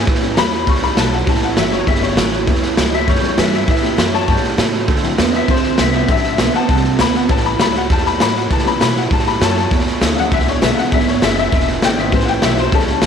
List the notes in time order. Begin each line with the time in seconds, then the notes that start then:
0.07 A2 E3, kick, snare
0.15 snare
0.22 G3 B3 C#4, snare
0.34 E2 A2 E3 F#3 G3 C#4 A#5, snare, hi-hat pedal
0.38 E4 B5
0.52 A2 F#3 C#4 E4, snare
0.67 C#2 E2 A2 G3 B3 C#4 C#6, kick, snare
0.75 snare
0.82 B5, snare
0.97 B1 A2 E3 F#3 G3 C#4 E4 A5, snare, hi-hat pedal
1.12 A2 F#3 C#4 E4 F#5, snare
1.26 A1 A2 E3 G3 B3 C#4 A5, kick, snare
1.35 snare
1.42 F#5, snare
1.57 F#1 A2 E3 F#3 G3 C#4 E4 E5, snare, hi-hat pedal
1.72 A2 F#3 C#4 E4 C#5, snare
1.87 G1 E2 A2 G3 E5, kick, snare
1.95 snare
2.00 G3 B3 C#4 C#5, snare
2.17 A1 A2 E3 F#3 G3 C#4 E4, snare, hi-hat pedal
2.32 A2 F#3 C#4 E4, snare
2.46 A2 E3 G3 B3 C#4, kick, snare
2.55 snare
2.63 snare
2.77 C#2 A2 E3 F#3 G3 C#4 E4, snare, hi-hat pedal
2.90 A2 F#3 C#4 E4 D#5, snare
2.95 E5
3.07 E2 F#2 A2 G3 C#5, kick, snare
3.15 snare
3.22 G3 B3 C#4, muted upright bass stroke, snare
3.37 G2 A2 E3 F#3 G3 C#4 E4 E5, snare, hi-hat pedal
3.52 A2 F#3 E5, snare
3.67 A2 E3 E5, kick, snare
3.76 snare
3.82 B3 C#4 G4, snare
3.97 F#2 A2 E3 F#3 G3 C#4 E4, snare, hi-hat pedal
4.12 A2 F#3 C#4 E4 C#5 A5, snare
4.28 G2 A2 B2 G3, kick, snare
4.36 snare
4.43 muted upright bass stroke, snare
4.58 A2 C#3 F#3, snare, hi-hat pedal
4.73 A2 F#3, snare
4.88 D2 D3 A3, kick, snare
4.96 snare
5.03 F#3 C4 E4, snare
5.18 E2 D3 A3 B3 C4 F#4, snare, hi-hat pedal
5.32 D3 B3 C4 F#4 D#5, snare
5.36 E5
5.48 D2 A2 D3 C4 C5, kick, snare
5.56 snare
5.63 snare
5.78 C2 D3 A3 B3 C4 F#4 E5, snare, hi-hat pedal
5.93 D3 B3 C4 F#4 E5, snare
6.08 A1 D3 F#3 A3 C4 E4 E5, kick, snare
6.16 snare
6.24 snare
6.38 B1 D3 A3 B3 C4 F#4, snare, hi-hat pedal
6.53 D3 B3 C4 F#4 F#5 A5, snare
6.69 C2 A2 D3 C4, kick, snare
6.76 snare
6.84 snare
6.97 D2 D3 A3 B3 C4 A#5, snare, hi-hat pedal
7.01 F#4 B5
7.14 D3 B3 C4 F#4 F#5, snare
7.28 A1 A2 E3 G3 B3 C#4 A5, kick, snare
7.37 snare
7.45 B5, snare
7.59 C#2 A2 E3 F#3 G3 C#4 E4 B5, snare, hi-hat pedal
7.74 A2 F#3 C#4 E4 F#5, snare
7.90 E2 A2 G3 A5, kick, snare
7.98 snare
8.06 B5, snare
8.17 A2 E3 F#3 G3 C#4 E4 A#5, snare, hi-hat pedal
8.22 B5
8.35 A2 F#3 C#4 E4 F#5, snare
8.50 A2 C#3 E3 A5, kick, snare
8.59 snare
8.65 G3 B3 C#4 B5, snare
8.78 A2 B2 E3 F#3 G3 C#4 E4 A#5, snare, hi-hat pedal
8.82 B5
8.96 A2 F#3 C#4 E4 F#5, snare
9.11 G2 A2 G3 A5, kick, snare
9.19 snare
9.27 B5, snare
9.41 F#2 A2 F#3 C#5 A5, snare, hi-hat pedal
9.56 A2 F#3, snare
9.71 E2 B2, kick, snare
9.79 snare
9.87 snare
10.01 D2 E2 C#3 D3 G#3 B3 E4, snare, hi-hat pedal
10.15 E2 C#3 F#3 G#3 B3 D4 E4 F5, snare
10.19 F#5
10.31 C#2 E2 B2 D3 E5, kick, snare
10.40 snare
10.47 C#5, snare
10.62 B1 E2 C#3 D3 G#3 B3 E4 E5, snare, hi-hat pedal
10.74 E2 C#3 F5, snare
10.79 F#5
10.91 G#1 E2 B2 F#3 G#3 D4 E5, kick, snare
11.00 snare
11.08 C#5, snare
11.21 F#1 E2 C#3 D3 G#3 B3 E4 E5, snare, hi-hat pedal
11.35 E2 C#3 B3 D#5, snare
11.39 E5
11.52 E1 E2 B2 D3, kick, snare
11.60 snare
11.68 snare
11.82 G#1 E2 C#3 D3 G#3 B3 E4 G5, snare, hi-hat pedal
11.97 E2 C#3 B3 E4 E5, snare
12.12 A1 A2 E3 G3 B3 C#4 C5, kick, snare
12.20 snare
12.25 F#5, snare
12.29 G5
12.41 B1 A2 E3 F#3 G3 C#4 E4 E5, snare, hi-hat pedal
12.57 A2 F#3 C#4 E4 C5, snare
12.72 C#2 E2 A2 G3 C#4 A4, kick, snare
12.79 snare
12.87 snare
13.02 D2 A2 E3 G3 C#4, snare, hi-hat pedal